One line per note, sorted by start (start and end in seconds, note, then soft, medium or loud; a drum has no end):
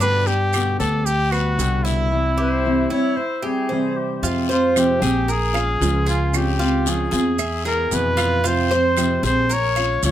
0.00 0.74 G2 medium
0.00 0.26 B2 medium
0.00 0.27 D3 medium
0.00 0.27 G3 medium
0.00 0.27 B3 medium
0.00 0.52 D4 medium
0.00 0.25 G4 medium
0.00 0.28 B4 loud
0.00 long guiro medium
0.00 maracas medium
0.26 0.54 G3 soft
0.26 0.53 B3 soft
0.26 0.53 G4 soft
0.26 0.79 G4 medium
0.26 maracas soft
0.53 0.80 B2 medium
0.53 0.80 D3 medium
0.53 0.80 G3 medium
0.53 0.79 B3 medium
0.53 0.80 G4 medium
0.53 0.78 G4 medium
0.53 short guiro medium
0.53 claves medium
0.53 maracas medium
0.79 1.56 D2 loud
0.79 1.05 G3 soft
0.79 1.05 B3 soft
0.79 1.05 G4 medium
0.79 1.07 A4 medium
0.79 1.31 D5 medium
0.79 short guiro medium
0.79 maracas soft
1.05 1.33 G4 medium
1.05 muted nylon-string guitar stroke medium
1.05 long guiro medium
1.05 maracas medium
1.31 1.57 G3 soft
1.31 1.58 B3 soft
1.31 1.85 F#4 medium
1.31 1.58 G4 soft
1.31 1.84 B4 medium
1.31 claves medium
1.31 maracas soft
1.58 2.84 C2 medium
1.58 2.10 B2 medium
1.58 2.11 D3 medium
1.58 2.10 G3 medium
1.58 2.11 B3 medium
1.58 2.11 G4 medium
1.58 short guiro medium
1.58 maracas medium
1.84 3.69 E4 medium
1.84 2.37 E4 medium
1.84 short guiro medium
1.84 maracas soft
2.11 2.37 C3 medium
2.11 2.37 E3 medium
2.11 2.37 G3 medium
2.11 2.38 C4 medium
2.11 2.36 E4 medium
2.38 2.65 G3 soft
2.38 2.64 C4 soft
2.38 2.64 E4 soft
2.38 2.89 G4 medium
2.38 2.88 C5 loud
2.65 2.90 C3 medium
2.65 2.91 E3 medium
2.65 2.91 G3 medium
2.65 2.91 C4 medium
2.65 2.89 E4 medium
2.90 3.16 G3 soft
2.90 3.17 C4 soft
2.90 3.42 E4 medium
2.90 3.16 E4 medium
2.90 3.18 C#5 loud
3.16 3.45 C5 loud
3.16 muted nylon-string guitar stroke medium
3.42 3.70 G3 soft
3.42 3.69 C4 soft
3.42 3.69 E4 soft
3.42 3.69 G4 medium
3.42 3.98 G#4 medium
3.69 4.21 C3 medium
3.69 4.23 E3 medium
3.69 4.23 G3 medium
3.69 4.23 C4 medium
3.69 4.23 E4 medium
3.69 4.21 C5 medium
3.97 4.23 G4 medium
4.22 4.98 F2 medium
4.22 4.48 C3 medium
4.22 4.49 F3 medium
4.22 4.49 G#3 medium
4.22 4.49 C4 medium
4.22 4.49 F4 medium
4.22 4.48 G4 medium
4.22 long guiro medium
4.22 maracas medium
4.49 4.75 G#3 soft
4.49 4.75 C4 soft
4.49 4.80 F4 medium
4.49 4.75 G4 soft
4.49 5.01 C5 medium
4.49 maracas soft
4.76 5.01 C3 medium
4.76 5.02 F3 medium
4.76 5.01 G#3 medium
4.76 5.00 C4 medium
4.76 4.99 G4 medium
4.76 5.32 G4 medium
4.76 short guiro medium
4.76 claves medium
4.76 maracas medium
5.00 5.77 A#1 loud
5.00 5.28 G#3 soft
5.00 5.27 C4 soft
5.00 5.27 G4 medium
5.00 5.28 G#4 medium
5.00 short guiro medium
5.00 maracas soft
5.28 6.08 G#4 medium
5.28 5.54 A#4 medium
5.28 muted nylon-string guitar stroke medium
5.28 long guiro medium
5.28 maracas medium
5.53 5.79 G#3 soft
5.53 5.80 C#4 soft
5.53 5.79 F4 soft
5.53 6.06 F5 medium
5.53 claves medium
5.53 maracas soft
5.80 7.06 C#2 loud
5.80 6.32 F3 medium
5.80 6.33 G#3 medium
5.80 6.33 C#4 medium
5.80 6.33 F4 medium
5.80 short guiro medium
5.80 maracas medium
6.06 6.38 F4 medium
6.06 6.58 G#4 medium
6.06 short guiro medium
6.06 maracas soft
6.33 6.59 C#3 medium
6.33 6.59 F3 medium
6.33 6.59 G#3 medium
6.33 6.59 C4 medium
6.33 6.58 F4 medium
6.33 6.90 G4 medium
6.33 long guiro medium
6.33 claves medium
6.33 maracas medium
6.59 6.85 G#3 soft
6.59 6.85 C4 soft
6.59 6.85 F4 medium
6.59 7.11 F4 medium
6.59 maracas soft
6.85 7.11 C#3 medium
6.85 7.12 F3 medium
6.85 7.12 G#3 medium
6.85 7.12 C4 medium
6.85 7.11 F4 medium
6.85 7.66 G#4 medium
6.85 short guiro medium
6.85 maracas medium
7.11 7.88 E2 loud
7.11 7.38 G#3 soft
7.11 7.39 C4 soft
7.11 7.38 F4 medium
7.11 7.38 G#4 medium
7.11 short guiro medium
7.11 maracas soft
7.38 7.65 E5 medium
7.38 muted nylon-string guitar stroke medium
7.38 long guiro medium
7.38 claves medium
7.38 maracas medium
7.65 7.91 G#3 soft
7.65 7.91 B3 soft
7.65 7.91 E4 medium
7.65 8.16 G#4 medium
7.65 7.96 A#4 medium
7.65 maracas soft
7.91 9.17 F2 medium
7.91 8.43 B2 medium
7.91 8.43 E3 medium
7.91 8.43 G#3 medium
7.91 8.44 B3 medium
7.91 8.44 E4 medium
7.91 8.48 B4 medium
7.91 short guiro medium
7.91 maracas medium
8.17 8.43 F4 medium
8.17 short guiro medium
8.17 claves medium
8.17 maracas soft
8.44 8.70 C3 medium
8.44 8.70 F3 medium
8.44 8.70 G#3 medium
8.44 8.70 C4 medium
8.44 8.70 F4 medium
8.44 8.69 G4 medium
8.44 9.25 C5 medium
8.44 long guiro medium
8.44 maracas medium
8.70 8.96 G#3 soft
8.70 8.96 C4 soft
8.70 8.96 G4 medium
8.70 9.22 C5 medium
8.70 maracas soft
8.96 9.22 C3 medium
8.96 9.22 F3 medium
8.96 9.23 G#3 medium
8.96 9.23 C4 medium
8.96 9.23 G4 medium
8.96 short guiro medium
8.96 claves medium
8.96 maracas medium
9.23 9.99 A#1 loud
9.23 9.50 G#3 soft
9.23 9.50 C4 soft
9.23 9.49 G4 medium
9.23 9.49 G#4 medium
9.23 9.55 C5 medium
9.23 short guiro medium
9.23 maracas soft
9.49 9.75 A#4 medium
9.49 10.04 C#5 loud
9.49 muted nylon-string guitar stroke medium
9.49 long guiro medium
9.49 maracas medium
9.76 10.03 G#3 soft
9.76 10.03 C#4 soft
9.76 10.02 F4 medium
9.76 10.11 F5 medium
9.76 claves medium
9.76 maracas soft
10.03 10.11 C#2 medium
10.03 10.11 F3 medium
10.03 10.11 G#3 medium
10.03 10.11 C#4 medium
10.03 10.11 F4 medium
10.03 10.11 C#5 medium
10.03 short guiro medium
10.03 maracas medium